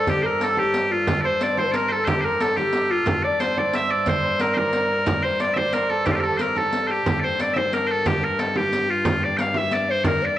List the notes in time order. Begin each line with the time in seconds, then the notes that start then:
Already playing: G2 A4 C5 D5
0.07 G4, riq, frame drum
0.22 A#4 C5, frame drum
0.40 A4, riq, frame drum
0.57 G4, frame drum
0.74 riq
0.90 F4
1.07 riq, frame drum
1.21 C5 D5, frame drum
1.25 C5
1.41 D5, riq, frame drum
1.58 C5, frame drum
1.63 A#4 C5
1.72 A#4 D5, riq
1.87 A#4 C5
1.91 A4
2.04 G4 C5, riq, frame drum
2.09 G4
2.21 A#4 C5, frame drum
2.25 A#4
2.40 A4, riq
2.56 G4, riq, frame drum
2.73 G4, riq
2.90 F4
3.06 G2, riq, frame drum
3.23 D5, frame drum
3.39 C5, riq, frame drum
3.56 D5, frame drum
3.73 E5, riq
3.89 D5
4.06 C5, riq, frame drum
4.24 C5, frame drum
4.39 A#4, riq
4.54 A#4 C5, frame drum
4.73 riq
5.06 riq, frame drum
5.23 C5, frame drum
5.39 D5, riq, frame drum
5.54 C5 E5, frame drum
5.73 A#4, riq
5.88 A4
6.05 G4, riq, frame drum
6.11 F4 G4
6.15 G4
6.20 A4 A#4
6.37 A#4 C5, riq
6.55 A4, riq, frame drum
6.72 riq, frame drum
6.87 G4 C5
7.06 G2, riq, frame drum
7.20 C5 D5, frame drum
7.39 D5, riq, frame drum
7.54 C5 E5, frame drum
7.72 A#4, riq
7.87 C5
7.91 A4
8.05 G4, riq, frame drum
8.21 A#4, frame drum
8.38 A4, riq, frame drum
8.55 G4, frame drum
8.73 riq
8.88 F4
9.05 riq, frame drum
9.22 D5, frame drum
9.37 F5 G5, riq, frame drum
9.54 E5, frame drum
9.72 D5, riq
9.89 C5
10.04 A#4 D5, riq, frame drum
10.21 D5, riq, frame drum
10.25 D5